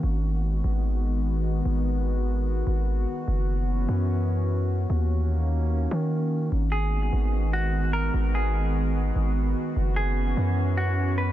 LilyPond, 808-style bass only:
\new Staff \with { instrumentName = "808-style bass" } { \clef bass \time 4/4 \key gis \minor \tempo 4 = 148 gis,,4. gis,,2~ gis,,8 | gis,,2~ gis,,8 gis,,4 r8 | fis,,4. fis,2~ fis,8 | dis,2~ dis,8 dis4. |
gis,,4. gis,,2~ gis,,8 | gis,,2~ gis,,8 gis,,4 r8 | fis,,4. fis,2~ fis,8 | }